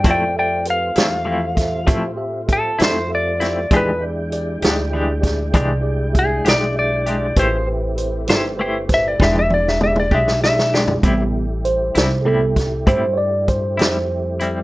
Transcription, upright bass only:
\new Staff \with { instrumentName = "Upright bass" } { \clef bass \time 12/8 \key a \minor \tempo 4. = 66 f,4. e,4. a,4. f,4. | e,4. d,4. c,4. b,,4. | a,,4. g,,4. e,,4. b,,4. | a,,4. c,4. g,4. f,4. | }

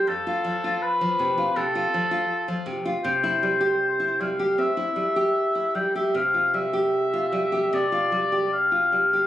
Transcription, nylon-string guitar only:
\new Staff \with { instrumentName = "Nylon-string guitar" } { \time 4/4 \key c \major \tempo 4 = 77 f,16 f'16 f16 f'8 f16 c16 f'16 c16 f'16 f16 f'8 f16 c16 f'16 | c16 e'16 g16 g'8 e'16 g16 g'16 c'16 e'16 g16 g'8 e'16 g16 g'16 | c16 f'16 g16 g'8 f'16 g16 g'16 c16 f'16 g16 g'8 f'16 g16 g'16 | }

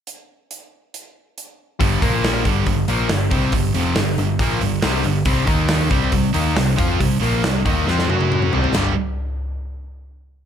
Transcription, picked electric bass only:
\new Staff \with { instrumentName = "Picked electric bass" } { \clef bass \time 4/4 \key c \major \tempo 4 = 138 r1 | g,,8 bes,,4 g,,8 g,,8 bes,,8 g,,8 c,8 | g,,8 f,,8 g,,8 g,,8 bes,,8 g,,8 c,8 g,,8 | c,8 ees,4 c,8 c,8 ees,8 c,8 f,8 |
c,8 bes,,8 c,8 ees,8 f,8 fis,4 c,8 | g,,8 r2. r8 | }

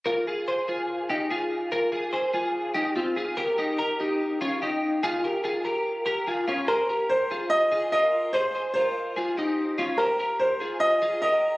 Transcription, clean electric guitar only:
\new Staff \with { instrumentName = "Clean electric guitar" } { \time 4/4 \key f \minor \tempo 4 = 145 <f' bes'>8 <f' aes'>8 <aes' c''>8 <f' aes'>4 <ees' g'>8 <f' aes'>4 | <f' bes'>8 <f' aes'>8 <aes' c''>8 <f' aes'>4 <ees' g'>8 <c' f'>8 <f' aes'>8 | <g' bes'>8 <ees' g'>8 <g' bes'>8 <ees' g'>4 <des' f'>8 <ees' g'>4 | <f' aes'>8 <g' bes'>8 <f' aes'>8 <g' bes'>4 <g' bes'>8 <f' aes'>8 <des' f'>8 |
<aes' c''>8 <g' bes'>4 <f' aes'>4 <f' aes'>8 <f' bes'>4 | <aes' c''>8 <aes' c''>8 <f' bes'>4 <f' aes'>8 <ees' g'>4 <des' f'>8 | <g' c''>8 <g' bes'>4 <f' aes'>4 <f' aes'>8 <g' bes'>4 | }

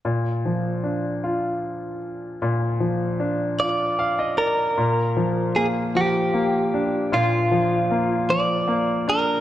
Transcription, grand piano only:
<<
  \new Staff \with { instrumentName = "Grand piano" } { \time 6/8 \key bes \mixolydian \tempo 4. = 51 r2. | r2 f''16 ees''16 d''8 | r2. | r2. | }
  \new Staff \with { instrumentName = "Grand piano" } { \clef bass \time 6/8 \key bes \mixolydian bes,8 f8 d'8 f'4. | bes,8 f8 d'8 f'4. | bes,8 f8 bes8 f8 bes8 d'8 | bes,8 f8 bes8 f8 bes8 d'8 | }
>>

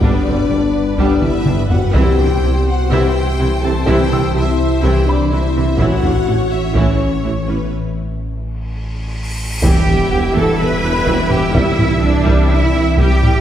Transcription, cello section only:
\new Staff \with { instrumentName = "Cello section" } { \clef bass \time 4/4 \key c \lydian \tempo 4 = 125 g,8 g,8 g,8 r8 g,8 r8 g,8 g,8 | c8 c8 c8 r8 c8 r8 c8 c8 | c8 c8 c8 r8 c8 r8 c8 c8 | a,8 a,8 a,8 r8 a,8 r8 a,8 a,8 |
r1 | g'4. a'8 b'4. g'8 | e'4 d'4 e'4 g'4 | }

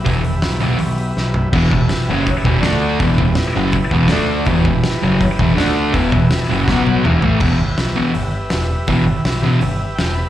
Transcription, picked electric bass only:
\new Staff \with { instrumentName = "Picked electric bass" } { \clef bass \time 4/4 \key e \minor \tempo 4 = 163 e,,4 b,,4 b,,4 b,,4 | e,,8 e,,8 r8 fis,,8 r8 e,,8 d,4 | e,,8 e,,8 r8 fis,,8 r8 e,,8 d,4 | e,,8 e,,8 r8 fis,,8 r8 e,,8 d,4 |
e,,8 e,,8 r8 fis,,8 b,,4 e,,8 a,,8 | e,,8 g,,8 b,,4 g,,4 e,,4 | e,,8 g,,8 b,,4 g,,4 e,,4 | }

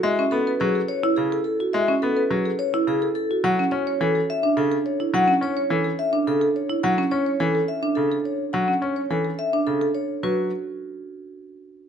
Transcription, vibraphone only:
\new Staff \with { instrumentName = "Vibraphone" } { \time 3/4 \key d \lydian \tempo 4 = 106 e''16 r16 a'16 r16 gis'16 r16 cis''16 r16 gis'16 r16 a'16 r16 | e''16 r16 a'16 r16 gis'16 r16 cis''16 r16 gis'16 r16 a'16 r16 | fis''16 r16 cis''16 r16 a'16 r16 e''16 r16 a'16 r16 cis''16 r16 | fis''16 r16 cis''16 r16 a'16 r16 e''16 r16 a'16 r16 cis''16 r16 |
fis''16 r16 cis''16 r16 a'16 r16 e''16 r16 a'16 r16 cis''16 r16 | fis''16 r16 cis''16 r16 a'16 r16 e''16 r16 a'16 r16 cis''16 r16 | b'8 r2 r8 | }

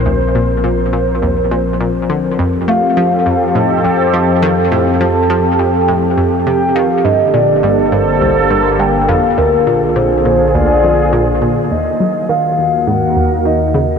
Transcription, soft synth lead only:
\new Staff \with { instrumentName = "Soft synth lead" } { \time 4/4 \key bes \major \tempo 4 = 103 r1 | r8 f''4. ees''8 c''8 ees''8 f''8~ | f''8 a''4 g''4 r8 g''8 f''8 | ees''8 d''4 c''4 bes'8 g''8 f''8 |
bes'4 c''4 d''4. r8 | \key ees \minor ees''4 f''4 ges''4 ees''8. r16 | }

